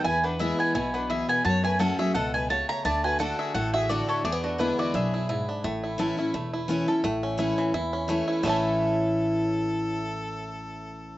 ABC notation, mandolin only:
X:1
M:4/4
L:1/8
Q:"Swing" 1/4=172
K:A
V:1 name="Mandolin"
g B e g g B e g | a g f e f g a _b | a g f e f e d c | d F B d e3 z |
z8 | z8 | e8- | e8 |]